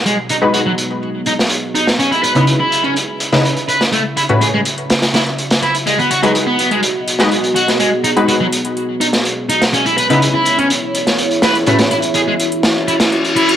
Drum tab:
HH |x-xxx-xxx-xxx-xx|xxxxx-xxx-xxxxxx|x-xxx-xxxxxxxxxx|xxxxx-xxx-xxxxxx|
SD |-----------o---o|-----------o---o|--------ooo--o--|-----------o---o|

HH |x-xxx-xxx-xxx-xx|xxxxx-xxx-xxxxxx|xxxxx-xxx-xxxxxx|
SD |-----------o---o|-----------o--o-|-o------o--o----|